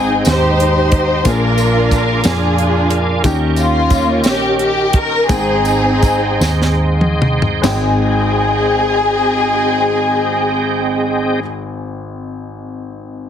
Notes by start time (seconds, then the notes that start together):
Already playing: G#1 G#2 G#3 C4 D#4 G#4 D#5 G5 C6
0.25 D#2 D#4 G4 C5, snare, closed hi-hat, tambourine
0.60 closed hi-hat
0.92 kick, closed hi-hat
1.24 A#1 A#2 A#3 D4 F4 G#4 A#4 F5 G#5 D6, kick, closed hi-hat, tambourine
1.58 closed hi-hat, tambourine
1.91 A#4, kick, closed hi-hat, tambourine
2.24 F2 D4 F4 G#4, snare, closed hi-hat, tambourine
2.58 closed hi-hat
2.90 closed hi-hat
3.24 D#2 D#3 A#3 C#4 D#4 G4 D#5 G5 C#6, kick, closed hi-hat, tambourine
3.56 A#3 C#4 F4, closed hi-hat, tambourine
3.90 kick, closed hi-hat, tambourine
4.24 A#1 G4, snare, closed hi-hat, tambourine
4.59 G4, closed hi-hat
4.93 A#4, kick, closed hi-hat
5.28 G#1 G#2 G#3 C4 D#4 G#4 G5 C6, kick, closed hi-hat, tambourine
5.65 closed hi-hat, tambourine
6.03 kick, closed hi-hat, tambourine
6.41 D#2, snare, tambourine
6.62 snare
7.01 mid tom
7.22 mid tom
7.42 floor tom
7.62 G#1 G#3 C4 D#4 G#4 D#5 G5, snare, floor tom, tambourine, splash
7.67 G5